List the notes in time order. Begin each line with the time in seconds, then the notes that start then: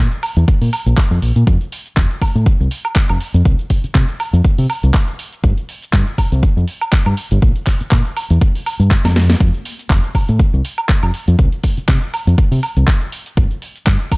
0.12 closed hi-hat, cabasa
0.23 open hi-hat, high woodblock
0.37 E2, closed hi-hat, cabasa
0.48 kick, closed hi-hat, cabasa
0.61 A#2, open hi-hat, cabasa
0.73 open hi-hat, high woodblock
0.86 A#1, closed hi-hat, cabasa
0.97 kick, clap, closed hi-hat, cabasa
1.11 F2, closed hi-hat, cabasa
1.22 A#1, open hi-hat
1.36 A#2, closed hi-hat, cabasa
1.47 F2, kick, closed hi-hat, cabasa
1.61 closed hi-hat, cabasa
1.72 open hi-hat
1.86 closed hi-hat, cabasa
1.97 F1, kick, clap, closed hi-hat, cabasa
2.11 closed hi-hat, cabasa
2.22 kick, open hi-hat, high woodblock
2.35 A2, closed hi-hat, cabasa
2.46 muted fingered electric bass stroke, kick, closed hi-hat, cabasa
2.60 C2, cabasa
2.71 open hi-hat
2.85 closed hi-hat, cabasa, high woodblock
2.96 kick, clap, closed hi-hat, cabasa
3.09 F1, closed hi-hat, cabasa, high woodblock
3.21 open hi-hat
3.34 F2, closed hi-hat, cabasa
3.45 kick, closed hi-hat, cabasa
3.59 closed hi-hat, cabasa
3.70 kick, open hi-hat
3.84 muted fingered electric bass stroke, closed hi-hat, cabasa
3.95 C3, kick, clap, closed hi-hat, cabasa
4.09 closed hi-hat, cabasa
4.20 open hi-hat, high woodblock
4.33 F2, closed hi-hat, cabasa
4.45 kick, closed hi-hat, cabasa
4.58 C3, open hi-hat, cabasa
4.70 open hi-hat, high woodblock
4.83 C2, closed hi-hat, cabasa
4.94 kick, clap, closed hi-hat, cabasa
5.08 closed hi-hat, cabasa
5.19 open hi-hat
5.33 closed hi-hat, cabasa
5.44 G1, kick, closed hi-hat, cabasa
5.58 closed hi-hat, cabasa
5.69 open hi-hat
5.83 closed hi-hat, cabasa
5.93 G2, kick, clap, closed hi-hat, cabasa
6.07 closed hi-hat, cabasa
6.18 kick, open hi-hat, high woodblock
6.32 C2, closed hi-hat, cabasa
6.43 muted fingered electric bass stroke, kick, closed hi-hat, cabasa
6.57 F2, cabasa
6.68 open hi-hat
6.81 closed hi-hat, cabasa, high woodblock
6.92 kick, clap, closed hi-hat, cabasa
7.06 G2, closed hi-hat, cabasa, high woodblock
7.17 open hi-hat
7.31 G1, closed hi-hat, cabasa
7.42 kick, closed hi-hat, cabasa
7.56 closed hi-hat, cabasa
7.67 kick, clap, open hi-hat
7.81 muted fingered electric bass stroke, closed hi-hat, cabasa
7.91 A#2, kick, clap, closed hi-hat, cabasa
8.05 closed hi-hat, cabasa
8.17 open hi-hat, high woodblock
8.30 E2, closed hi-hat, cabasa
8.41 kick, closed hi-hat, cabasa
8.55 open hi-hat, cabasa
8.66 open hi-hat, high woodblock
8.80 G2, closed hi-hat, cabasa
8.91 kick, clap, closed hi-hat, cabasa
9.04 F2, snare, closed hi-hat, cabasa, high woodblock
9.16 snare, open hi-hat
9.30 snare, closed hi-hat, cabasa
9.40 F2, kick, closed hi-hat, cabasa
9.54 closed hi-hat, cabasa
9.65 open hi-hat
9.79 closed hi-hat, cabasa
9.90 F1, kick, clap, closed hi-hat, cabasa
10.04 closed hi-hat, cabasa
10.15 kick, open hi-hat, high woodblock
10.29 A2, closed hi-hat, cabasa
10.40 muted fingered electric bass stroke, kick, closed hi-hat, cabasa
10.54 C2, cabasa
10.65 open hi-hat
10.78 closed hi-hat, cabasa, high woodblock
10.89 kick, clap, closed hi-hat, cabasa
11.03 F1, closed hi-hat, cabasa, high woodblock
11.14 open hi-hat
11.28 F2, closed hi-hat, cabasa
11.39 C2, kick, closed hi-hat, cabasa
11.52 closed hi-hat, cabasa
11.63 kick, open hi-hat
11.77 muted fingered electric bass stroke, closed hi-hat, cabasa
11.88 C3, kick, clap, closed hi-hat, cabasa
12.02 closed hi-hat, cabasa
12.14 open hi-hat, high woodblock
12.27 F2, closed hi-hat, cabasa
12.38 kick, closed hi-hat, cabasa
12.52 C3, open hi-hat, cabasa
12.63 open hi-hat, high woodblock
12.76 C2, closed hi-hat, cabasa
12.87 kick, clap, closed hi-hat, cabasa
13.01 closed hi-hat, cabasa
13.12 open hi-hat
13.26 closed hi-hat, cabasa
13.37 G1, kick, closed hi-hat, cabasa
13.51 closed hi-hat, cabasa
13.62 open hi-hat
13.76 closed hi-hat, cabasa
13.87 G2, kick, clap, closed hi-hat, cabasa
14.00 closed hi-hat, cabasa
14.12 kick, open hi-hat, high woodblock